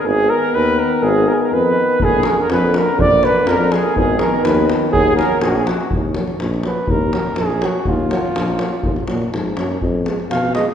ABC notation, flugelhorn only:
X:1
M:2/4
L:1/16
Q:"Swing 16ths" 1/4=123
K:Ebm
V:1 name="Flugelhorn"
A2 B2 c2 B2 | A2 B/2 A/2 B c4 | A2 B/2 A/2 B c2 B2 | =d2 c2 B2 A2 |
A2 B2 c2 z2 | A2 B2 A/2 G/2 A G2 | z6 c2 | B4 A2 G2 |
F8- | F2 z6 | z4 f2 e2 |]